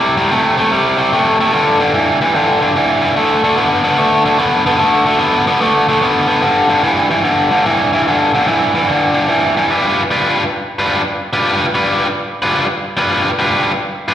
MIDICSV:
0, 0, Header, 1, 2, 480
1, 0, Start_track
1, 0, Tempo, 408998
1, 1789, Time_signature, 4, 2, 24, 8
1, 16596, End_track
2, 0, Start_track
2, 0, Title_t, "Overdriven electric guitar"
2, 0, Program_c, 0, 29
2, 0, Note_on_c, 0, 48, 94
2, 0, Note_on_c, 0, 55, 105
2, 162, Note_off_c, 0, 48, 0
2, 167, Note_off_c, 0, 55, 0
2, 199, Note_on_c, 0, 48, 76
2, 212, Note_on_c, 0, 55, 87
2, 339, Note_off_c, 0, 48, 0
2, 345, Note_off_c, 0, 55, 0
2, 363, Note_on_c, 0, 48, 82
2, 368, Note_on_c, 0, 57, 91
2, 645, Note_off_c, 0, 48, 0
2, 647, Note_off_c, 0, 57, 0
2, 674, Note_on_c, 0, 48, 75
2, 685, Note_on_c, 0, 57, 90
2, 816, Note_off_c, 0, 48, 0
2, 822, Note_off_c, 0, 57, 0
2, 844, Note_on_c, 0, 48, 70
2, 846, Note_on_c, 0, 55, 82
2, 1124, Note_off_c, 0, 48, 0
2, 1125, Note_off_c, 0, 55, 0
2, 1146, Note_on_c, 0, 48, 74
2, 1151, Note_on_c, 0, 55, 83
2, 1291, Note_off_c, 0, 48, 0
2, 1294, Note_off_c, 0, 55, 0
2, 1321, Note_on_c, 0, 48, 82
2, 1325, Note_on_c, 0, 57, 89
2, 1603, Note_off_c, 0, 48, 0
2, 1605, Note_off_c, 0, 57, 0
2, 1648, Note_on_c, 0, 57, 76
2, 1652, Note_on_c, 0, 48, 69
2, 1782, Note_off_c, 0, 57, 0
2, 1784, Note_off_c, 0, 48, 0
2, 1796, Note_on_c, 0, 43, 74
2, 1797, Note_on_c, 0, 50, 90
2, 2079, Note_off_c, 0, 43, 0
2, 2080, Note_off_c, 0, 50, 0
2, 2112, Note_on_c, 0, 43, 73
2, 2120, Note_on_c, 0, 50, 86
2, 2253, Note_off_c, 0, 43, 0
2, 2257, Note_off_c, 0, 50, 0
2, 2275, Note_on_c, 0, 43, 76
2, 2275, Note_on_c, 0, 52, 95
2, 2558, Note_off_c, 0, 52, 0
2, 2559, Note_off_c, 0, 43, 0
2, 2594, Note_on_c, 0, 43, 66
2, 2603, Note_on_c, 0, 52, 74
2, 2734, Note_off_c, 0, 43, 0
2, 2738, Note_off_c, 0, 52, 0
2, 2753, Note_on_c, 0, 43, 74
2, 2759, Note_on_c, 0, 50, 72
2, 3037, Note_off_c, 0, 43, 0
2, 3040, Note_off_c, 0, 50, 0
2, 3065, Note_on_c, 0, 43, 74
2, 3065, Note_on_c, 0, 50, 76
2, 3209, Note_off_c, 0, 43, 0
2, 3209, Note_off_c, 0, 50, 0
2, 3236, Note_on_c, 0, 43, 71
2, 3243, Note_on_c, 0, 52, 84
2, 3518, Note_off_c, 0, 43, 0
2, 3522, Note_off_c, 0, 52, 0
2, 3539, Note_on_c, 0, 43, 72
2, 3542, Note_on_c, 0, 52, 77
2, 3685, Note_off_c, 0, 43, 0
2, 3687, Note_off_c, 0, 52, 0
2, 3711, Note_on_c, 0, 50, 83
2, 3716, Note_on_c, 0, 57, 102
2, 3995, Note_off_c, 0, 50, 0
2, 3997, Note_off_c, 0, 57, 0
2, 4033, Note_on_c, 0, 50, 81
2, 4038, Note_on_c, 0, 57, 78
2, 4167, Note_off_c, 0, 50, 0
2, 4174, Note_off_c, 0, 57, 0
2, 4181, Note_on_c, 0, 50, 84
2, 4186, Note_on_c, 0, 59, 92
2, 4469, Note_off_c, 0, 50, 0
2, 4472, Note_off_c, 0, 59, 0
2, 4503, Note_on_c, 0, 50, 74
2, 4512, Note_on_c, 0, 59, 81
2, 4647, Note_off_c, 0, 50, 0
2, 4651, Note_off_c, 0, 59, 0
2, 4666, Note_on_c, 0, 50, 73
2, 4672, Note_on_c, 0, 57, 85
2, 4952, Note_off_c, 0, 50, 0
2, 4955, Note_off_c, 0, 57, 0
2, 4990, Note_on_c, 0, 50, 79
2, 4999, Note_on_c, 0, 57, 72
2, 5130, Note_off_c, 0, 50, 0
2, 5134, Note_off_c, 0, 57, 0
2, 5148, Note_on_c, 0, 50, 82
2, 5151, Note_on_c, 0, 59, 95
2, 5432, Note_off_c, 0, 50, 0
2, 5434, Note_off_c, 0, 59, 0
2, 5467, Note_on_c, 0, 50, 78
2, 5475, Note_on_c, 0, 59, 82
2, 5608, Note_off_c, 0, 50, 0
2, 5612, Note_off_c, 0, 59, 0
2, 5620, Note_on_c, 0, 57, 88
2, 5622, Note_on_c, 0, 50, 85
2, 5908, Note_off_c, 0, 57, 0
2, 5909, Note_off_c, 0, 50, 0
2, 5934, Note_on_c, 0, 50, 70
2, 5949, Note_on_c, 0, 57, 86
2, 6077, Note_off_c, 0, 50, 0
2, 6088, Note_off_c, 0, 57, 0
2, 6091, Note_on_c, 0, 50, 81
2, 6094, Note_on_c, 0, 59, 88
2, 6383, Note_off_c, 0, 50, 0
2, 6385, Note_off_c, 0, 59, 0
2, 6416, Note_on_c, 0, 50, 67
2, 6424, Note_on_c, 0, 59, 80
2, 6562, Note_off_c, 0, 50, 0
2, 6566, Note_off_c, 0, 59, 0
2, 6582, Note_on_c, 0, 50, 74
2, 6585, Note_on_c, 0, 57, 86
2, 6868, Note_off_c, 0, 50, 0
2, 6870, Note_off_c, 0, 57, 0
2, 6907, Note_on_c, 0, 50, 79
2, 6915, Note_on_c, 0, 57, 83
2, 7047, Note_off_c, 0, 50, 0
2, 7051, Note_off_c, 0, 57, 0
2, 7059, Note_on_c, 0, 50, 82
2, 7066, Note_on_c, 0, 59, 84
2, 7347, Note_off_c, 0, 50, 0
2, 7350, Note_off_c, 0, 59, 0
2, 7365, Note_on_c, 0, 59, 89
2, 7368, Note_on_c, 0, 50, 75
2, 7516, Note_off_c, 0, 59, 0
2, 7517, Note_off_c, 0, 50, 0
2, 7529, Note_on_c, 0, 43, 87
2, 7538, Note_on_c, 0, 50, 101
2, 7822, Note_off_c, 0, 43, 0
2, 7826, Note_off_c, 0, 50, 0
2, 7851, Note_on_c, 0, 43, 82
2, 7861, Note_on_c, 0, 50, 88
2, 7998, Note_off_c, 0, 43, 0
2, 8004, Note_off_c, 0, 50, 0
2, 8019, Note_on_c, 0, 43, 83
2, 8021, Note_on_c, 0, 52, 93
2, 8306, Note_off_c, 0, 43, 0
2, 8307, Note_off_c, 0, 52, 0
2, 8332, Note_on_c, 0, 43, 70
2, 8343, Note_on_c, 0, 52, 84
2, 8475, Note_off_c, 0, 43, 0
2, 8485, Note_off_c, 0, 52, 0
2, 8489, Note_on_c, 0, 43, 82
2, 8498, Note_on_c, 0, 50, 85
2, 8782, Note_off_c, 0, 43, 0
2, 8786, Note_off_c, 0, 50, 0
2, 8811, Note_on_c, 0, 43, 76
2, 8816, Note_on_c, 0, 50, 81
2, 8958, Note_off_c, 0, 43, 0
2, 8961, Note_off_c, 0, 50, 0
2, 8986, Note_on_c, 0, 43, 80
2, 8990, Note_on_c, 0, 52, 92
2, 9270, Note_off_c, 0, 43, 0
2, 9272, Note_off_c, 0, 52, 0
2, 9302, Note_on_c, 0, 43, 79
2, 9310, Note_on_c, 0, 52, 85
2, 9444, Note_off_c, 0, 43, 0
2, 9448, Note_off_c, 0, 52, 0
2, 9473, Note_on_c, 0, 43, 99
2, 9478, Note_on_c, 0, 50, 100
2, 9754, Note_off_c, 0, 43, 0
2, 9756, Note_off_c, 0, 50, 0
2, 9789, Note_on_c, 0, 43, 84
2, 9791, Note_on_c, 0, 50, 93
2, 9927, Note_off_c, 0, 43, 0
2, 9929, Note_off_c, 0, 50, 0
2, 9940, Note_on_c, 0, 43, 77
2, 9949, Note_on_c, 0, 52, 92
2, 10227, Note_off_c, 0, 43, 0
2, 10232, Note_off_c, 0, 52, 0
2, 10259, Note_on_c, 0, 43, 77
2, 10266, Note_on_c, 0, 52, 92
2, 10403, Note_off_c, 0, 43, 0
2, 10406, Note_off_c, 0, 52, 0
2, 10423, Note_on_c, 0, 43, 81
2, 10435, Note_on_c, 0, 50, 92
2, 10709, Note_off_c, 0, 43, 0
2, 10715, Note_off_c, 0, 50, 0
2, 10724, Note_on_c, 0, 43, 78
2, 10732, Note_on_c, 0, 50, 82
2, 10875, Note_off_c, 0, 43, 0
2, 10879, Note_off_c, 0, 50, 0
2, 10896, Note_on_c, 0, 43, 79
2, 10909, Note_on_c, 0, 52, 89
2, 11186, Note_off_c, 0, 43, 0
2, 11193, Note_off_c, 0, 52, 0
2, 11225, Note_on_c, 0, 43, 74
2, 11232, Note_on_c, 0, 52, 87
2, 11366, Note_off_c, 0, 43, 0
2, 11370, Note_off_c, 0, 52, 0
2, 11388, Note_on_c, 0, 55, 76
2, 11389, Note_on_c, 0, 62, 76
2, 11397, Note_on_c, 0, 65, 72
2, 11398, Note_on_c, 0, 71, 86
2, 11752, Note_off_c, 0, 55, 0
2, 11753, Note_off_c, 0, 62, 0
2, 11757, Note_off_c, 0, 65, 0
2, 11758, Note_off_c, 0, 71, 0
2, 11861, Note_on_c, 0, 55, 67
2, 11871, Note_on_c, 0, 62, 71
2, 11874, Note_on_c, 0, 65, 75
2, 11880, Note_on_c, 0, 71, 78
2, 12229, Note_off_c, 0, 55, 0
2, 12235, Note_off_c, 0, 62, 0
2, 12236, Note_off_c, 0, 65, 0
2, 12239, Note_off_c, 0, 71, 0
2, 12659, Note_on_c, 0, 71, 72
2, 12665, Note_on_c, 0, 65, 75
2, 12669, Note_on_c, 0, 55, 62
2, 12672, Note_on_c, 0, 62, 70
2, 12917, Note_off_c, 0, 71, 0
2, 12921, Note_off_c, 0, 65, 0
2, 12922, Note_off_c, 0, 55, 0
2, 12924, Note_off_c, 0, 62, 0
2, 13297, Note_on_c, 0, 55, 76
2, 13305, Note_on_c, 0, 62, 74
2, 13308, Note_on_c, 0, 71, 85
2, 13311, Note_on_c, 0, 65, 76
2, 13670, Note_off_c, 0, 55, 0
2, 13674, Note_off_c, 0, 62, 0
2, 13676, Note_off_c, 0, 71, 0
2, 13677, Note_off_c, 0, 65, 0
2, 13784, Note_on_c, 0, 55, 76
2, 13790, Note_on_c, 0, 62, 73
2, 13795, Note_on_c, 0, 65, 74
2, 13797, Note_on_c, 0, 71, 86
2, 14154, Note_off_c, 0, 55, 0
2, 14157, Note_off_c, 0, 62, 0
2, 14160, Note_off_c, 0, 65, 0
2, 14161, Note_off_c, 0, 71, 0
2, 14580, Note_on_c, 0, 71, 85
2, 14589, Note_on_c, 0, 65, 85
2, 14593, Note_on_c, 0, 62, 65
2, 14594, Note_on_c, 0, 55, 73
2, 14841, Note_off_c, 0, 71, 0
2, 14846, Note_off_c, 0, 65, 0
2, 14848, Note_off_c, 0, 55, 0
2, 14848, Note_off_c, 0, 62, 0
2, 15221, Note_on_c, 0, 55, 78
2, 15231, Note_on_c, 0, 62, 76
2, 15234, Note_on_c, 0, 65, 88
2, 15239, Note_on_c, 0, 71, 91
2, 15595, Note_off_c, 0, 55, 0
2, 15600, Note_off_c, 0, 62, 0
2, 15602, Note_off_c, 0, 65, 0
2, 15604, Note_off_c, 0, 71, 0
2, 15712, Note_on_c, 0, 55, 80
2, 15719, Note_on_c, 0, 62, 76
2, 15725, Note_on_c, 0, 71, 82
2, 15726, Note_on_c, 0, 65, 82
2, 16082, Note_off_c, 0, 55, 0
2, 16085, Note_off_c, 0, 62, 0
2, 16088, Note_off_c, 0, 65, 0
2, 16088, Note_off_c, 0, 71, 0
2, 16525, Note_on_c, 0, 65, 78
2, 16529, Note_on_c, 0, 71, 88
2, 16539, Note_on_c, 0, 62, 77
2, 16540, Note_on_c, 0, 55, 69
2, 16596, Note_off_c, 0, 55, 0
2, 16596, Note_off_c, 0, 62, 0
2, 16596, Note_off_c, 0, 65, 0
2, 16596, Note_off_c, 0, 71, 0
2, 16596, End_track
0, 0, End_of_file